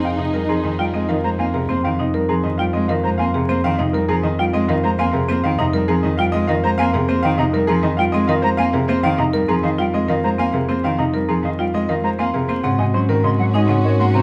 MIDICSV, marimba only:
0, 0, Header, 1, 2, 480
1, 0, Start_track
1, 0, Key_signature, -4, "minor"
1, 0, Tempo, 600000
1, 31, Time_signature, 3, 2, 24, 8
1, 11379, End_track
2, 0, Start_track
2, 0, Title_t, "Marimba"
2, 0, Program_c, 0, 12
2, 152, Note_on_c, 0, 63, 72
2, 270, Note_on_c, 0, 70, 77
2, 308, Note_off_c, 0, 63, 0
2, 393, Note_on_c, 0, 60, 68
2, 427, Note_off_c, 0, 70, 0
2, 548, Note_off_c, 0, 60, 0
2, 632, Note_on_c, 0, 65, 85
2, 753, Note_on_c, 0, 60, 74
2, 788, Note_off_c, 0, 65, 0
2, 870, Note_on_c, 0, 70, 77
2, 908, Note_off_c, 0, 60, 0
2, 1027, Note_off_c, 0, 70, 0
2, 1112, Note_on_c, 0, 60, 83
2, 1233, Note_on_c, 0, 68, 75
2, 1267, Note_off_c, 0, 60, 0
2, 1352, Note_on_c, 0, 60, 92
2, 1388, Note_off_c, 0, 68, 0
2, 1507, Note_off_c, 0, 60, 0
2, 1593, Note_on_c, 0, 63, 70
2, 1712, Note_on_c, 0, 70, 90
2, 1748, Note_off_c, 0, 63, 0
2, 1832, Note_on_c, 0, 60, 73
2, 1867, Note_off_c, 0, 70, 0
2, 1988, Note_off_c, 0, 60, 0
2, 2073, Note_on_c, 0, 65, 87
2, 2192, Note_on_c, 0, 60, 76
2, 2228, Note_off_c, 0, 65, 0
2, 2314, Note_on_c, 0, 70, 79
2, 2348, Note_off_c, 0, 60, 0
2, 2468, Note_off_c, 0, 70, 0
2, 2555, Note_on_c, 0, 60, 79
2, 2674, Note_on_c, 0, 68, 80
2, 2708, Note_off_c, 0, 60, 0
2, 2794, Note_on_c, 0, 60, 86
2, 2828, Note_off_c, 0, 68, 0
2, 2948, Note_off_c, 0, 60, 0
2, 3034, Note_on_c, 0, 63, 71
2, 3154, Note_on_c, 0, 70, 98
2, 3188, Note_off_c, 0, 63, 0
2, 3273, Note_on_c, 0, 60, 82
2, 3308, Note_off_c, 0, 70, 0
2, 3428, Note_off_c, 0, 60, 0
2, 3514, Note_on_c, 0, 65, 104
2, 3632, Note_on_c, 0, 60, 86
2, 3668, Note_off_c, 0, 65, 0
2, 3752, Note_on_c, 0, 70, 86
2, 3787, Note_off_c, 0, 60, 0
2, 3907, Note_off_c, 0, 70, 0
2, 3992, Note_on_c, 0, 60, 100
2, 4111, Note_on_c, 0, 68, 91
2, 4147, Note_off_c, 0, 60, 0
2, 4229, Note_on_c, 0, 60, 107
2, 4267, Note_off_c, 0, 68, 0
2, 4386, Note_off_c, 0, 60, 0
2, 4469, Note_on_c, 0, 63, 82
2, 4587, Note_on_c, 0, 70, 101
2, 4626, Note_off_c, 0, 63, 0
2, 4709, Note_on_c, 0, 60, 82
2, 4746, Note_off_c, 0, 70, 0
2, 4867, Note_off_c, 0, 60, 0
2, 4950, Note_on_c, 0, 65, 105
2, 5069, Note_on_c, 0, 60, 82
2, 5107, Note_off_c, 0, 65, 0
2, 5191, Note_on_c, 0, 70, 86
2, 5226, Note_off_c, 0, 60, 0
2, 5347, Note_off_c, 0, 70, 0
2, 5433, Note_on_c, 0, 60, 95
2, 5554, Note_on_c, 0, 68, 90
2, 5588, Note_off_c, 0, 60, 0
2, 5669, Note_on_c, 0, 60, 101
2, 5708, Note_off_c, 0, 68, 0
2, 5826, Note_off_c, 0, 60, 0
2, 5911, Note_on_c, 0, 63, 90
2, 6031, Note_on_c, 0, 70, 104
2, 6067, Note_off_c, 0, 63, 0
2, 6153, Note_on_c, 0, 60, 90
2, 6187, Note_off_c, 0, 70, 0
2, 6308, Note_off_c, 0, 60, 0
2, 6392, Note_on_c, 0, 65, 108
2, 6514, Note_on_c, 0, 60, 97
2, 6547, Note_off_c, 0, 65, 0
2, 6630, Note_on_c, 0, 70, 93
2, 6668, Note_off_c, 0, 60, 0
2, 6787, Note_off_c, 0, 70, 0
2, 6868, Note_on_c, 0, 60, 95
2, 6991, Note_on_c, 0, 68, 87
2, 7026, Note_off_c, 0, 60, 0
2, 7111, Note_on_c, 0, 60, 104
2, 7147, Note_off_c, 0, 68, 0
2, 7267, Note_off_c, 0, 60, 0
2, 7349, Note_on_c, 0, 63, 82
2, 7467, Note_on_c, 0, 70, 105
2, 7506, Note_off_c, 0, 63, 0
2, 7586, Note_on_c, 0, 60, 82
2, 7626, Note_off_c, 0, 70, 0
2, 7745, Note_off_c, 0, 60, 0
2, 7827, Note_on_c, 0, 65, 97
2, 7951, Note_on_c, 0, 60, 81
2, 7986, Note_off_c, 0, 65, 0
2, 8069, Note_on_c, 0, 70, 88
2, 8107, Note_off_c, 0, 60, 0
2, 8226, Note_off_c, 0, 70, 0
2, 8308, Note_on_c, 0, 60, 85
2, 8430, Note_on_c, 0, 68, 80
2, 8466, Note_off_c, 0, 60, 0
2, 8549, Note_on_c, 0, 60, 88
2, 8587, Note_off_c, 0, 68, 0
2, 8706, Note_off_c, 0, 60, 0
2, 8788, Note_on_c, 0, 63, 76
2, 8908, Note_on_c, 0, 70, 89
2, 8946, Note_off_c, 0, 63, 0
2, 9029, Note_on_c, 0, 60, 72
2, 9066, Note_off_c, 0, 70, 0
2, 9186, Note_off_c, 0, 60, 0
2, 9271, Note_on_c, 0, 65, 97
2, 9393, Note_on_c, 0, 60, 71
2, 9427, Note_off_c, 0, 65, 0
2, 9512, Note_on_c, 0, 70, 74
2, 9548, Note_off_c, 0, 60, 0
2, 9667, Note_off_c, 0, 70, 0
2, 9751, Note_on_c, 0, 60, 84
2, 9871, Note_on_c, 0, 68, 82
2, 9907, Note_off_c, 0, 60, 0
2, 9993, Note_on_c, 0, 60, 85
2, 10027, Note_off_c, 0, 68, 0
2, 10103, Note_off_c, 0, 60, 0
2, 10113, Note_on_c, 0, 60, 89
2, 10268, Note_off_c, 0, 60, 0
2, 10355, Note_on_c, 0, 61, 74
2, 10471, Note_on_c, 0, 70, 89
2, 10508, Note_off_c, 0, 61, 0
2, 10594, Note_on_c, 0, 60, 75
2, 10627, Note_off_c, 0, 70, 0
2, 10748, Note_off_c, 0, 60, 0
2, 10833, Note_on_c, 0, 63, 94
2, 10952, Note_on_c, 0, 60, 79
2, 10988, Note_off_c, 0, 63, 0
2, 11074, Note_on_c, 0, 70, 75
2, 11107, Note_off_c, 0, 60, 0
2, 11228, Note_off_c, 0, 70, 0
2, 11313, Note_on_c, 0, 60, 83
2, 11379, Note_off_c, 0, 60, 0
2, 11379, End_track
0, 0, End_of_file